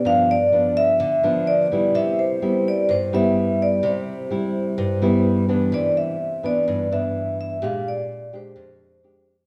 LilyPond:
<<
  \new Staff \with { instrumentName = "Vibraphone" } { \time 4/4 \key c \major \tempo 4 = 127 f''8 d''4 e''4. d''4 | e''8 c''4 d''8 c''8 e''4 d''8 | c''2. r4 | d''8 e''4 d''4 e''4 e''8 |
f''8 d''4 c''2 r8 | }
  \new Staff \with { instrumentName = "Nylon-string guitar" } { \time 4/4 \key c \major << { <f b d'>8 r8 <f b d'>4 r8 <f b d'>4 <g b e'>8~ | <g b e'>4 <g b e'>4 r8 <g b e'>4. | <g e'>4 <g e'>4. <g b e'>4 <e b d'>8~ | <e b d'>4 r8 <e b d'>4 <e b d'>4. |
<aes d' g'>4. <aes d' g'>4. <aes d' g'>8 r8 | } \\ { g,2 d2 | c2 g,2 | c2 g,2 | c2 g,2 |
bes,2 f,2 | } >> }
>>